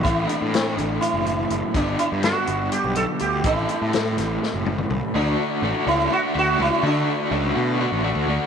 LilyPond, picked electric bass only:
\new Staff \with { instrumentName = "Picked electric bass" } { \clef bass \time 7/8 \key a \dorian \tempo 4 = 124 a,,8 r16 a,8. a,,8 r16 fis,,8. fis,,16 r16 | g,,8 r16 g,8 r16 g,,8 r16 b,,8 r16 d,8 | a,,8 r16 a,8. a,,8 r16 fis,,8. c,16 r16 | \key d \major d,8 r8 a,,16 r16 cis,8 r8 d,8 cis,16 r16 |
d8 r8 cis,8 b,8. a,,8 d,16 d,16 r16 | }